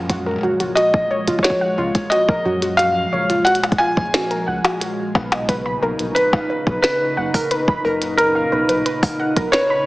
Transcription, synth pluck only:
0.09 F#4
0.26 A#4
0.43 F#4
0.60 F#4
0.77 F#4
1.11 C#5
1.28 F4
1.44 F#4
1.61 F#5
1.78 F4
2.12 F#4
2.29 A#4
2.45 F#4
2.62 F#4
2.79 F#4
3.13 C#5
3.30 F4
3.47 F#4
3.63 F#5
3.80 F4
4.14 F#4
4.31 A#4
4.48 F#5
4.64 F#4
4.81 F#4
5.15 B4
5.32 D#5
5.49 B4
5.66 B5
5.82 A#4
6.16 B4
6.33 F5
6.50 B4
6.67 B4
6.84 B4
7.17 F#5
7.34 A#4
7.51 B4
7.68 B5
7.85 A#4
8.18 B4
8.35 F5
8.52 B4
8.69 B4
8.86 B4
9.20 F#5
9.36 A#4
9.53 B4
9.70 B5

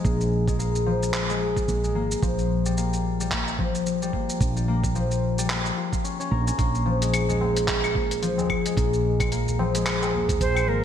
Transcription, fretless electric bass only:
0.05 A#1
1.68 A#1
1.96 G#1
2.22 A#1
4.41 A#1
6.32 A#1
6.59 A#1
8.77 A#1
10.40 A#1
10.68 G#1

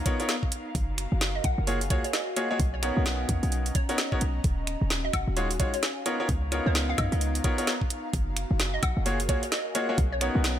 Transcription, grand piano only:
0.06 B3 D#4 F4 A#4 C#5
0.20 B3 D#4 F4 A#4 C#5
1.67 A#3 F4 F#4 G#4 C#5
1.90 A#3 F4 F#4 G#4 C#5
2.37 A#3 F4 F#4 G#4 C#5
2.51 A#3 F4 F#4 G#4 C#5
2.83 B3 D#4 F#4 A#4 C#5
3.89 B3 D#4 F#4 A#4 C#5
4.12 B3 D#4 F#4 A#4 C#5
5.37 G#3 D#4 F4 F#4 C#5
5.60 G#3 D#4 F4 F#4 C#5
6.06 B3 D#4 F4 A#4 C#5
6.20 B3 D#4 F4 A#4 C#5
6.52 B3 D#4 F4 A#4 C#5
7.44 B3 D#4 F4 A#4 C#5
7.58 B3 D#4 F4 A#4 C#5
9.06 A#3 F4 F#4 G#4 C#5
9.29 A#3 F4 F#4 G#4 C#5
9.75 A#3 F4 F#4 G#4 C#5
9.89 A#3 F4 F#4 G#4 C#5
10.21 B3 D#4 F#4 A#4 C#5

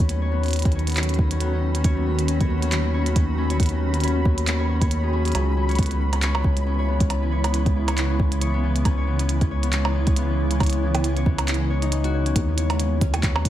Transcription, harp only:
Already playing: B3 G#4 C#5
0.09 C#4
0.22 C#5
0.32 B3
0.44 C#4
0.66 C#4
0.75 C#5
0.87 B3
0.97 C#4
1.19 C#4
1.31 C#5
1.41 B3
1.53 C#4
1.75 C#4
1.85 C#5
1.97 B3
2.06 C#4
2.28 C#4
2.40 C#5
2.50 B3
2.62 C#4
2.84 C#4
2.94 C#5
3.06 B3
3.16 C#4
3.38 C#4
3.50 C#5
3.60 B3
3.72 C#4
3.94 C#4
4.04 C#5
4.16 B3
4.25 C#4
4.47 C#4
4.60 C#5
4.69 C#5
4.82 C#5
5.03 G#4
5.13 C#4
5.25 G#4
5.35 C#4
5.57 C#4
5.69 C#5
5.79 B3
5.91 C#4
6.13 C#4
6.23 C#5
6.35 B3
6.45 C#4
6.67 C#4
6.79 C#5
6.88 B3
7.01 C#4
7.22 C#4
7.32 C#5
7.44 B3
7.54 C#4
7.76 C#4
7.88 C#5
7.98 B3
8.10 C#4
8.32 C#4
8.42 C#5
8.54 B3
8.63 C#4
8.85 C#4
8.98 C#5
9.07 B3
9.19 C#4
9.41 C#4
9.51 C#5
9.63 B3
9.73 C#4
9.95 C#4
10.07 C#5
10.17 B3
10.29 C#4
10.51 C#4
10.61 C#5
10.73 B3
10.82 C#4
11.04 C#4
11.17 C#5
11.26 B3
11.39 C#4
11.60 C#4
11.70 C#5
11.82 D#4
11.92 C#4
12.04 F#4
12.14 C#5
12.26 C#4
12.48 C#4
12.58 C#5
12.70 B3
12.79 C#4
13.01 C#4
13.14 C#5
13.23 B3
13.35 C#4

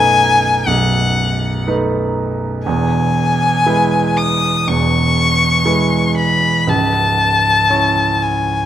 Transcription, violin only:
Already playing: G#5
0.67 F#5
2.65 G#5
4.17 D#6
4.68 C#6
6.18 B5
6.69 A5
8.22 G#5

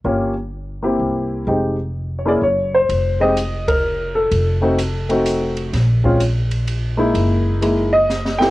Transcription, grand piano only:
0.04 A#3 C#4 F4 G4
0.82 A#3 C4 E4 G4
1.47 G#3 C4 D#4 G4
2.18 C#5
2.25 A#3 C#4 E4 G#4 D5
2.43 C#5
2.75 C5
3.20 G#3 C4 D#4 G4 D#5
3.68 A#4
4.15 A4
4.61 A3 C4 D#4 F#4
5.09 A3 C4 D#4 F#4
6.04 G#3 C4 C#4 F4
6.97 G#3 A#3 D#4 E4
7.62 G#3 A#3 D#4 E4
7.93 D#5
8.39 A3 B3 E4 G4 G5

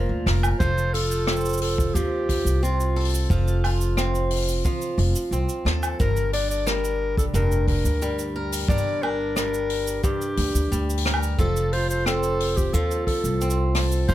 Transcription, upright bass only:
0.09 D2
0.26 F1
0.60 F1
1.95 D#2
2.45 C2
3.30 F1
4.98 F1
5.31 C2
5.65 D#2
6.00 G1
7.34 F1
7.84 D2
8.69 G1
10.37 D2
10.55 D2
10.72 D2
11.38 F1
12.74 D#2
13.24 C2
14.09 F1

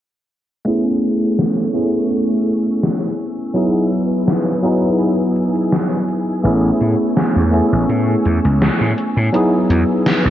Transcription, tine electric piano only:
0.65 A3 B3 C#4 E4 G#4
1.73 A3 B3 C#4 E4 G#4
3.53 F#3 B3 D#4 E4 G#4
4.62 F#3 B3 D#4 E4 G#4
6.43 A3 B3 C#4 E4 G#4
7.51 A3 B3 C#4 E4 G#4
9.32 F#3 B3 D#4 E4 G#4

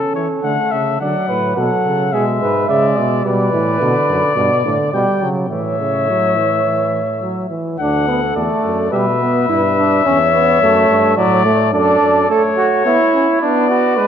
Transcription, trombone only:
Already playing: C#4
0.44 A3
1.00 F#3
1.56 F#3
2.12 G#3
2.69 G#3
3.26 G3
3.53 E3
3.80 D3
4.36 B2
4.65 D3
4.94 G3
5.22 F#3
5.51 E3
5.79 C#3
6.09 F#3
6.37 E3
6.64 E3
7.21 F#3
7.50 E3
7.79 D4
8.08 B3
8.37 A3
8.92 G3
9.21 B3
9.49 E4
9.78 D4
10.06 C#4
10.34 B3
10.62 A3
11.17 F#3
11.45 A3
11.73 D4
12.29 A3
12.85 B3
13.14 C#4
13.42 B3
13.98 G#3

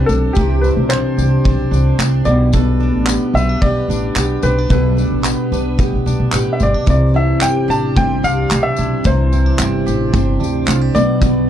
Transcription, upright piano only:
0.06 A4
0.33 G4
0.61 B4
0.89 C5
2.25 D5
3.35 E5
3.62 D5
4.43 B4
4.71 B4
6.53 E5
6.63 D5
6.90 D5
7.16 E5
7.42 G5
7.70 A5
7.97 G5
8.24 F5
8.63 E5
9.07 C5
10.95 D5

